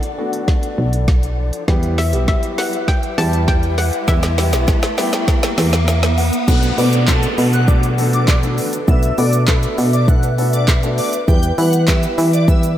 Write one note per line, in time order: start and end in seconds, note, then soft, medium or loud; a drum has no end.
0.00 1.64 D4 medium
0.00 1.64 A4 medium
0.00 0.74 D5 medium
0.00 1.66 D5 medium
0.00 1.41 F#5 medium
0.00 closed hi-hat medium
0.00 downlifter medium
0.00 riser medium
0.18 0.94 A3 medium
0.18 0.94 B3 medium
0.18 0.94 D4 medium
0.18 0.94 F#4 medium
0.33 closed hi-hat medium
0.48 kick loud
0.48 snare medium
0.63 closed hi-hat medium
0.78 1.51 B1 medium
0.93 closed hi-hat medium
1.08 kick loud
1.08 snare medium
1.23 closed hi-hat soft
1.53 closed hi-hat medium
1.68 2.15 E2 loud
1.68 1.96 G3 medium
1.68 1.96 B3 medium
1.68 6.21 E4 medium
1.68 1.97 E4 medium
1.68 6.19 G4 medium
1.68 1.97 G4 loud
1.68 6.23 B4 medium
1.68 6.44 E5 medium
1.68 kick loud
1.68 snare medium
1.83 closed hi-hat medium
1.98 2.27 E5 medium
1.98 snare medium
1.98 open hi-hat medium
2.13 2.38 B1 loud
2.13 2.79 G3 medium
2.13 2.79 B3 medium
2.13 2.79 E4 medium
2.13 2.79 G4 medium
2.13 closed hi-hat medium
2.28 2.59 E5 medium
2.28 kick loud
2.28 snare medium
2.43 closed hi-hat medium
2.58 2.89 F#5 medium
2.58 snare medium
2.58 open hi-hat medium
2.73 closed hi-hat medium
2.88 3.19 G5 loud
2.88 kick loud
2.88 snare medium
3.03 closed hi-hat medium
3.18 3.91 E2 loud
3.18 3.75 G3 medium
3.18 3.75 B3 medium
3.18 3.75 E4 medium
3.18 3.75 G4 medium
3.18 3.49 A5 loud
3.18 snare medium
3.18 open hi-hat medium
3.33 closed hi-hat medium
3.48 3.79 G5 loud
3.48 kick loud
3.48 snare medium
3.63 closed hi-hat soft
3.78 4.09 F#5 medium
3.78 snare loud
3.78 open hi-hat medium
3.93 closed hi-hat medium
4.08 4.54 E2 loud
4.08 4.27 G3 medium
4.08 4.27 B3 medium
4.08 4.27 E4 medium
4.08 4.27 G4 medium
4.08 5.84 E5 medium
4.08 kick loud
4.08 snare loud
4.08 shaker medium
4.23 snare loud
4.23 closed hi-hat medium
4.23 shaker medium
4.38 4.76 G3 medium
4.38 4.76 B3 medium
4.38 4.76 E4 medium
4.38 4.76 G4 medium
4.38 snare loud
4.38 open hi-hat medium
4.38 shaker medium
4.53 4.77 B1 loud
4.53 snare loud
4.53 closed hi-hat medium
4.53 shaker medium
4.68 kick loud
4.68 snare loud
4.68 shaker medium
4.83 snare loud
4.83 closed hi-hat medium
4.83 shaker medium
4.98 5.74 G3 medium
4.98 5.74 B3 medium
4.98 5.74 E4 medium
4.98 5.74 G4 loud
4.98 snare loud
4.98 open hi-hat medium
4.98 shaker medium
5.13 snare loud
5.13 closed hi-hat medium
5.13 shaker medium
5.28 kick loud
5.28 snare loud
5.28 shaker medium
5.43 snare loud
5.43 closed hi-hat medium
5.43 shaker medium
5.58 6.31 E2 loud
5.58 snare loud
5.58 open hi-hat medium
5.58 shaker medium
5.73 snare loud
5.73 closed hi-hat medium
5.73 shaker medium
5.88 6.16 E5 medium
5.88 snare loud
5.88 shaker medium
6.03 snare loud
6.03 closed hi-hat soft
6.03 shaker soft
6.18 6.46 F#5 medium
6.18 open hi-hat medium
6.18 shaker medium
6.33 closed hi-hat medium
6.33 shaker medium
6.48 6.72 B1 loud
6.48 6.67 A3 medium
6.48 6.67 B3 medium
6.48 6.67 D4 medium
6.48 6.67 F#4 medium
6.48 11.24 A4 medium
6.48 6.67 A4 medium
6.48 12.78 B4 medium
6.48 6.71 F#5 loud
6.48 kick loud
6.48 crash loud
6.48 downlifter medium
6.48 shaker medium
6.63 closed hi-hat medium
6.63 shaker medium
6.78 7.27 B2 medium
6.78 6.97 A3 medium
6.78 6.97 B3 medium
6.78 6.97 D4 medium
6.78 6.97 F#4 medium
6.78 6.97 B4 medium
6.78 7.02 D5 medium
6.78 open hi-hat medium
6.78 shaker medium
6.93 closed hi-hat medium
6.93 shaker medium
7.08 7.46 A3 medium
7.08 7.46 B3 medium
7.08 7.46 D4 medium
7.08 7.46 F#4 medium
7.08 7.46 A4 medium
7.08 7.20 A5 medium
7.08 kick loud
7.08 snare loud
7.08 clap loud
7.08 shaker medium
7.23 closed hi-hat medium
7.23 shaker medium
7.38 8.60 B2 loud
7.38 open hi-hat medium
7.38 shaker medium
7.53 7.65 F#5 medium
7.53 closed hi-hat medium
7.53 shaker medium
7.68 7.87 A3 medium
7.68 7.87 B3 medium
7.68 7.87 D4 medium
7.68 7.87 F#4 medium
7.68 7.87 A4 medium
7.68 7.80 D5 medium
7.68 kick loud
7.68 shaker medium
7.83 closed hi-hat medium
7.83 shaker medium
7.98 8.26 A3 medium
7.98 8.26 B3 medium
7.98 8.26 D4 medium
7.98 8.26 F#4 medium
7.98 8.26 A4 medium
7.98 open hi-hat medium
7.98 shaker medium
8.13 8.37 D5 medium
8.13 closed hi-hat medium
8.13 shaker medium
8.28 kick loud
8.28 snare medium
8.28 clap loud
8.28 shaker medium
8.43 8.71 A3 medium
8.43 8.71 B3 medium
8.43 8.72 D4 medium
8.43 8.72 F#4 medium
8.43 8.72 A4 medium
8.43 closed hi-hat soft
8.43 shaker soft
8.58 open hi-hat medium
8.58 shaker medium
8.73 closed hi-hat medium
8.73 shaker medium
8.88 9.13 B1 loud
8.88 9.07 A3 medium
8.88 9.07 B3 medium
8.88 9.07 D4 medium
8.88 9.07 F#4 medium
8.88 9.07 B4 medium
8.88 9.12 E5 loud
8.88 11.26 E5 medium
8.88 kick loud
8.88 shaker medium
9.03 closed hi-hat medium
9.03 shaker medium
9.18 9.67 B2 medium
9.18 9.37 A3 medium
9.18 9.37 B3 medium
9.18 9.37 D4 medium
9.18 9.37 F#4 medium
9.18 9.37 A4 medium
9.18 9.42 D5 medium
9.18 open hi-hat medium
9.18 shaker medium
9.33 closed hi-hat medium
9.33 shaker medium
9.48 9.86 A3 medium
9.48 9.86 B3 medium
9.48 9.86 D4 medium
9.48 9.86 F#4 medium
9.48 9.86 A4 medium
9.48 9.60 B4 medium
9.48 kick loud
9.48 snare loud
9.48 clap loud
9.48 shaker medium
9.63 closed hi-hat medium
9.63 shaker medium
9.78 11.00 B2 loud
9.78 open hi-hat medium
9.78 shaker medium
9.93 10.05 D5 medium
9.93 closed hi-hat medium
9.93 shaker medium
10.08 10.27 A3 medium
10.08 10.27 B3 medium
10.08 10.27 D4 medium
10.08 10.27 F#4 medium
10.08 10.27 A4 medium
10.08 10.20 F#5 medium
10.08 kick loud
10.08 shaker medium
10.23 closed hi-hat medium
10.23 shaker medium
10.38 10.66 A3 medium
10.38 10.67 B3 medium
10.38 10.67 D4 medium
10.38 10.67 F#4 medium
10.38 10.67 A4 medium
10.38 open hi-hat medium
10.38 shaker soft
10.53 10.65 D5 medium
10.53 closed hi-hat medium
10.53 shaker medium
10.68 kick loud
10.68 snare medium
10.68 clap loud
10.68 shaker medium
10.83 11.11 A3 medium
10.83 11.11 B3 medium
10.83 11.12 D4 medium
10.83 11.12 F#4 medium
10.83 11.12 A4 medium
10.83 closed hi-hat soft
10.83 shaker soft
10.98 11.10 D5 medium
10.98 open hi-hat medium
10.98 shaker medium
11.13 closed hi-hat medium
11.13 shaker medium
11.28 11.53 E2 loud
11.28 11.47 G3 medium
11.28 11.47 B3 medium
11.28 12.78 E4 medium
11.28 11.47 E4 medium
11.28 12.78 G4 medium
11.28 11.47 G4 medium
11.28 11.47 B4 medium
11.28 12.78 E5 medium
11.28 11.52 G5 loud
11.28 kick loud
11.28 shaker medium
11.43 closed hi-hat medium
11.43 shaker medium
11.58 12.07 E3 medium
11.58 11.77 G3 medium
11.58 11.77 B3 medium
11.58 11.77 E4 medium
11.58 11.77 G4 medium
11.58 11.77 B4 medium
11.58 11.81 F#5 medium
11.58 open hi-hat medium
11.58 shaker medium
11.73 closed hi-hat medium
11.73 shaker medium
11.88 12.26 G3 medium
11.88 12.26 B3 medium
11.88 12.26 E4 medium
11.88 12.26 G4 medium
11.88 12.26 B4 medium
11.88 11.99 E5 medium
11.88 kick loud
11.88 snare loud
11.88 clap loud
11.88 shaker medium
12.03 closed hi-hat medium
12.03 shaker medium
12.18 12.78 E3 loud
12.18 open hi-hat medium
12.18 shaker medium
12.33 12.45 D5 medium
12.33 closed hi-hat medium
12.33 shaker medium
12.48 12.67 G3 medium
12.48 12.67 B3 medium
12.48 12.67 E4 medium
12.48 12.67 G4 medium
12.48 12.67 B4 medium
12.48 12.60 E5 medium
12.48 kick loud
12.48 shaker medium
12.63 closed hi-hat medium
12.63 shaker medium